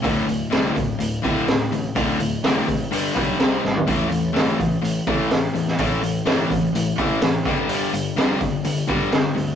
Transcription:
<<
  \new Staff \with { instrumentName = "Overdriven electric guitar" } { \clef bass \time 4/4 \key a \minor \tempo 4 = 126 <d, a, d>8 <d, a,>8 <d, a, d>8 <d, a,>8 <d, a,>8 <d, a, d>8 <d, a,>8 <d, a,>8 | <d, a, d>8 <d, a,>8 <d, a, d>8 <d, a,>8 <g, d g>8 <g, d g>8 <c g c'>8 <c g>8 | <a, e a>8 <a, e>8 <a, e a>8 <a, e>8 <a, e>8 <a, e a>8 <a, e>8 <a, e>8 | <a, e a>8 <a, e>8 <a, e a>8 <a, e>8 <a, e>8 <a, e a>8 <a, e>8 <g, d g>8 |
<g, d g>8 <g, d>8 <g, d g>8 <g, d>8 <g, d>8 <g, d g>8 <g, d>8 <g, d>8 | }
  \new Staff \with { instrumentName = "Overdriven electric guitar" } { \clef bass \time 4/4 \key a \minor <d, a, d>8 <d, a,>8 <d, a, d>8 <d, a,>8 <d, a,>8 <d, a, d>8 <d, a,>8 <d, a,>8 | <d, a, d>8 <d, a,>8 <d, a, d>8 <d, a,>8 <g, d g>8 <g, d g>8 <c g c'>8 <c g>8 | <a, e a>8 <a, e>8 <a, e a>8 <a, e>8 <a, e>8 <a, e a>8 <a, e>8 <a, e>8 | <a, e a>8 <a, e>8 <a, e a>8 <a, e>8 <a, e>8 <a, e a>8 <a, e>8 <g, d g>8 |
<g, d g>8 <g, d>8 <g, d g>8 <g, d>8 <g, d>8 <g, d g>8 <g, d>8 <g, d>8 | }
  \new Staff \with { instrumentName = "Picked electric bass" } { \clef bass \time 4/4 \key a \minor d,,8 d,,8 c,8 d,,8 d,,8 d,,8 d,,8 a,,8 | d,,8 d,,8 c,8 a,,8 g,,8 b,,8 c,8 gis,,8 | a,,8 a,,8 g,,8 a,,8 a,,8 a,,8 a,,8 e,8 | a,,8 a,,8 g,,8 a,,8 a,,8 a,,8 a,,8 g,,8 |
g,,8 g,,8 f,,8 g,,8 g,,8 g,,8 g,,8 d,8 | }
  \new DrumStaff \with { instrumentName = "Drums" } \drummode { \time 4/4 <hho bd>8 hho8 <hho sn>8 <hho bd>8 hho8 <hho bd>8 <hho sn>8 hho8 | <hho bd>8 hho8 <hho sn>8 <hho bd>8 hho8 <hho bd>8 <hho sn>8 sn16 tomfh16 | <hho bd>8 hho8 <hho sn>8 <hho bd>8 hho8 <hho bd>8 <hho sn>8 hho16 sn16 | <hho bd>8 hho8 <hho sn>8 <hho bd>8 hho8 <hho bd>8 <hho sn>8 <hho bd>8 |
hho8 hho8 <hho sn>8 <hho bd>8 hho8 <hho bd>8 <hho sn>8 hho8 | }
>>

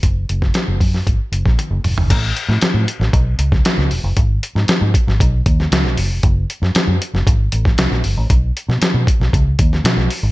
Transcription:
<<
  \new Staff \with { instrumentName = "Fingered electric bass" } { \clef bass \time 4/4 \key a \lydian \tempo 4 = 116 fis,,8 fis,,8 r16 fis,,16 fis,8 gis,,16 r16 fis,,16 ais,,16 r16 fis,,16 e,,16 fis,,16 | a,,8 r16 a,16 r16 a,16 r16 a,,16 b,,8 cis,8 r16 cis,16 e,,16 fis,,16 | gis,,8 r16 gis,16 r16 gis,16 r16 gis,,16 b,,8 dis,8 cis,16 b,,16 fis,,16 eis,,16 | fis,,8 r16 fis,16 r16 fis,16 r16 fis,,16 gis,,8 a,,8 c,16 ais,,16 g,,16 a,,16 |
b,,8 r16 b,16 r16 b,16 r16 b,,16 cis,8 dis,8 b,16 b,,16 r16 gis,,16 | }
  \new DrumStaff \with { instrumentName = "Drums" } \drummode { \time 4/4 <hh bd>8 hh16 <bd sn>16 <hh sn>8 <hho bd>16 sn16 <hh bd>8 hh16 <bd sn>16 <hh tommh>8 <hho toml>16 tomfh16 | <cymc hh bd>8 hh16 sn16 <hh sn>8 hh16 sn16 <hh bd>8 hh16 <bd sn>16 <hh sn>16 sn16 hho8 | <hh bd>8 hh16 sn16 <hh sn>8 <hh bd>16 sn16 <hh bd>8 <hh bd>16 sn16 <hh sn>16 sn16 hho8 | <hh bd>8 hh16 sn16 <hh sn>8 hh16 sn16 <hh bd>8 hh16 <bd sn>16 <hh sn>16 sn16 hho8 |
<hh bd>8 hh16 sn16 <hh sn>8 <hh bd>16 sn16 <hh bd>8 <hh bd>16 sn16 <hh sn>16 sn16 hho8 | }
>>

